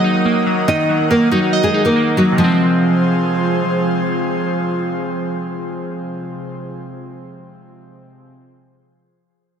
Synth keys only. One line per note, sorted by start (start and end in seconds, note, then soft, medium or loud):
0.00 0.68 D#3 medium
0.00 0.25 F#3 medium
0.00 0.24 A#3 medium
0.00 0.04 D#4 medium
0.00 0.89 D#5 medium
0.04 1.11 D#4 medium
0.25 1.09 A#3 medium
0.47 0.88 F#3 medium
0.68 1.74 D#3 medium
0.89 1.96 F#3 medium
1.11 1.95 A#3 medium
1.32 1.73 D#4 medium
1.53 2.38 D#5 loud
1.74 2.38 D#4 medium
1.96 2.38 A#3 medium
2.17 2.38 F#3 medium
2.32 7.20 C3 medium
2.36 7.24 F3 medium
2.36 7.25 G#3 medium
2.44 7.28 C4 medium